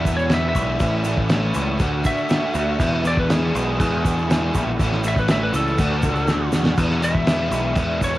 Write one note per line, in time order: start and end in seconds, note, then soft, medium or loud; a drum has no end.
0.00 0.52 E2 medium
0.00 0.15 E5 medium
0.05 0.29 E2 medium
0.05 0.29 B2 medium
0.05 0.29 E3 medium
0.05 0.30 G#3 medium
0.05 0.30 B3 loud
0.05 0.31 D4 medium
0.05 0.31 E4 medium
0.05 kick medium
0.05 crash medium
0.05 shaker medium
0.17 0.31 C#5 medium
0.17 shaker soft
0.29 0.53 E2 loud
0.29 0.54 B2 loud
0.29 0.54 E3 loud
0.29 0.55 G#3 loud
0.29 0.55 B3 loud
0.29 0.55 D4 loud
0.29 0.56 E4 loud
0.29 snare loud
0.29 crash medium
0.29 shaker medium
0.34 0.48 E5 medium
0.49 0.96 E5 medium
0.54 0.79 B1 medium
0.54 0.78 E2 medium
0.54 0.79 B2 medium
0.54 0.79 E3 medium
0.54 0.79 G#3 loud
0.54 0.79 B3 medium
0.54 0.80 D4 medium
0.54 0.80 E4 medium
0.54 kick medium
0.54 crash medium
0.54 shaker medium
0.79 1.51 A1 loud
0.79 1.03 A2 loud
0.79 1.04 E3 medium
0.79 1.05 A3 medium
0.79 1.05 C#4 loud
0.79 1.06 E4 loud
0.79 kick loud
0.79 crash medium
0.79 shaker medium
1.04 1.28 A2 medium
1.04 1.29 E3 medium
1.04 1.30 A3 medium
1.04 1.30 C#4 medium
1.04 1.30 E4 medium
1.04 crash medium
1.04 shaker medium
1.17 kick medium
1.29 1.53 A2 medium
1.29 1.53 E3 loud
1.29 1.54 A3 loud
1.29 1.54 C#4 loud
1.29 1.54 E4 loud
1.29 snare loud
1.29 crash medium
1.29 shaker medium
1.54 1.79 C#2 medium
1.54 1.78 A2 medium
1.54 1.78 E3 medium
1.54 1.79 A3 medium
1.54 1.79 C#4 medium
1.54 1.79 E4 medium
1.54 crash medium
1.54 shaker medium
1.79 2.03 D2 loud
1.79 2.02 D3 loud
1.79 2.03 A3 loud
1.79 2.04 D4 loud
1.79 2.04 F#4 loud
1.79 kick loud
1.79 crash medium
1.79 shaker medium
2.03 2.28 D3 medium
2.03 2.28 A3 medium
2.03 2.28 D4 medium
2.03 2.29 F#4 loud
2.03 3.02 E5 loud
2.03 kick medium
2.03 crash medium
2.03 shaker medium
2.17 shaker soft
2.29 2.53 D3 medium
2.29 2.53 A3 loud
2.29 2.54 D4 loud
2.29 2.54 F#4 loud
2.29 snare loud
2.29 crash medium
2.29 shaker medium
2.54 2.78 D2 loud
2.54 2.78 D3 medium
2.54 2.78 A3 medium
2.54 2.78 D4 medium
2.54 2.78 F#4 medium
2.54 crash medium
2.54 shaker medium
2.78 3.02 E2 medium
2.78 3.50 E2 loud
2.78 3.03 B2 loud
2.78 3.03 E3 loud
2.78 3.04 G#3 loud
2.78 3.04 B3 loud
2.78 3.04 D4 loud
2.78 3.05 E4 loud
2.78 kick loud
2.78 crash loud
2.78 shaker medium
3.04 3.27 E2 medium
3.04 3.28 B2 medium
3.04 3.28 E3 loud
3.04 3.29 G#3 medium
3.04 3.29 B3 medium
3.04 3.29 D4 medium
3.04 3.30 E4 medium
3.04 3.18 D5 medium
3.04 crash medium
3.04 shaker medium
3.17 3.32 B4 loud
3.17 kick medium
3.28 3.53 E2 loud
3.28 3.53 B2 loud
3.28 3.54 E3 loud
3.28 3.54 G#3 loud
3.28 3.55 B3 loud
3.28 3.54 D4 loud
3.28 3.55 E4 loud
3.28 4.76 G#4 medium
3.28 snare loud
3.28 crash medium
3.28 shaker medium
3.54 3.78 B1 loud
3.54 3.77 E2 medium
3.54 3.78 B2 medium
3.54 3.78 E3 medium
3.54 3.79 G#3 medium
3.54 3.79 B3 loud
3.54 3.79 D4 loud
3.54 3.80 E4 medium
3.54 crash medium
3.54 shaker medium
3.78 4.02 E2 medium
3.78 4.50 E2 loud
3.78 4.02 B2 loud
3.78 4.03 E3 loud
3.78 4.04 G#3 loud
3.78 4.04 B3 loud
3.78 4.05 D4 loud
3.78 4.04 E4 loud
3.78 kick loud
3.78 crash medium
3.78 shaker medium
4.03 4.27 E2 medium
4.03 4.28 B2 medium
4.03 4.28 E3 medium
4.03 4.29 G#3 loud
4.03 4.29 B3 loud
4.03 4.29 D4 medium
4.03 4.30 E4 medium
4.03 kick medium
4.03 crash medium
4.03 shaker medium
4.18 shaker soft
4.28 4.52 E2 loud
4.28 4.53 B2 loud
4.28 4.53 E3 loud
4.28 4.53 G#3 loud
4.28 4.54 B3 loud
4.28 4.55 D4 loud
4.28 4.54 E4 loud
4.28 snare loud
4.28 crash medium
4.28 shaker medium
4.54 4.77 A#1 loud
4.54 4.77 E2 medium
4.54 4.77 B2 medium
4.54 4.78 E3 medium
4.54 4.78 G#3 medium
4.54 4.78 B3 loud
4.54 4.78 D4 loud
4.54 4.78 E4 loud
4.54 kick medium
4.54 crash medium
4.54 shaker loud
4.79 5.50 A1 loud
4.79 5.02 A2 medium
4.79 5.03 E3 loud
4.79 5.03 A3 loud
4.79 5.04 C#4 loud
4.79 5.05 E4 loud
4.79 kick loud
4.79 crash medium
4.79 shaker medium
4.92 snare soft
5.03 5.28 A2 medium
5.03 5.28 E3 medium
5.03 5.29 A3 loud
5.03 5.29 C#4 loud
5.03 5.30 E4 loud
5.03 crash medium
5.03 shaker loud
5.08 5.18 E5 medium
5.16 5.30 B4 medium
5.16 kick medium
5.16 shaker soft
5.28 5.52 A2 medium
5.28 5.53 E3 medium
5.28 5.53 A3 medium
5.28 5.54 C#4 loud
5.28 5.54 E4 loud
5.28 5.42 E5 medium
5.28 snare loud
5.28 crash medium
5.28 shaker medium
5.43 5.54 B4 medium
5.53 5.77 C#2 medium
5.53 5.77 A2 medium
5.53 5.77 E3 medium
5.53 5.77 A3 medium
5.53 5.78 C#4 medium
5.53 5.78 E4 loud
5.53 6.51 A4 loud
5.53 crash medium
5.53 shaker loud
5.67 shaker soft
5.78 6.01 D2 medium
5.78 6.02 D3 medium
5.78 6.03 A3 loud
5.78 6.03 D4 loud
5.78 6.04 F#4 loud
5.78 kick loud
5.78 crash medium
5.78 shaker medium
6.02 6.25 C#2 medium
6.02 6.27 D3 medium
6.02 6.28 A3 medium
6.02 6.28 D4 loud
6.02 6.28 F#4 medium
6.02 kick medium
6.02 crash medium
6.02 shaker medium
6.15 shaker soft
6.27 6.50 D2 medium
6.27 6.52 D3 loud
6.27 6.53 A3 medium
6.27 6.53 D4 loud
6.27 6.53 F#4 loud
6.27 snare medium
6.27 shaker medium
6.52 6.75 E2 medium
6.52 6.76 D3 medium
6.52 6.77 A3 medium
6.52 6.77 D4 medium
6.52 6.77 F#4 medium
6.52 snare medium
6.52 shaker medium
6.65 snare loud
6.65 shaker soft
6.77 7.00 E2 loud
6.77 7.48 E2 medium
6.77 7.00 B2 loud
6.77 7.01 E3 loud
6.77 7.02 G#3 loud
6.77 7.02 B3 loud
6.77 7.02 D4 loud
6.77 7.02 E4 loud
6.77 kick loud
6.77 crash loud
6.77 shaker medium
6.90 snare soft
7.01 7.24 E2 medium
7.01 7.25 B2 medium
7.01 7.26 E3 medium
7.01 7.26 G#3 medium
7.01 7.27 B3 medium
7.01 7.26 D4 loud
7.01 7.27 E4 medium
7.01 7.99 E5 loud
7.01 crash medium
7.01 shaker medium
7.15 kick medium
7.26 7.49 E2 loud
7.26 7.50 B2 medium
7.26 7.51 E3 loud
7.26 7.51 G#3 loud
7.26 7.51 B3 loud
7.26 7.52 D4 medium
7.26 7.52 E4 loud
7.26 snare loud
7.26 crash medium
7.26 shaker medium
7.50 7.75 B1 loud
7.50 7.74 E2 medium
7.50 7.74 B2 medium
7.50 7.75 E3 medium
7.50 7.76 G#3 medium
7.50 7.76 B3 loud
7.50 7.76 D4 medium
7.50 7.77 E4 medium
7.50 crash medium
7.50 shaker loud
7.75 7.99 E2 medium
7.75 8.18 E2 loud
7.75 8.00 B2 medium
7.75 8.00 E3 loud
7.75 8.00 G#3 loud
7.75 8.01 B3 loud
7.75 8.01 D4 loud
7.75 8.01 E4 loud
7.75 kick loud
7.75 crash medium
7.75 shaker medium
8.00 8.18 E2 medium
8.00 8.18 B2 medium
8.00 8.18 E3 medium
8.00 8.18 G#3 medium
8.00 8.18 B3 medium
8.00 8.18 D4 medium
8.00 8.18 E4 medium
8.00 kick medium
8.00 crash medium
8.00 shaker loud
8.04 8.15 C#5 medium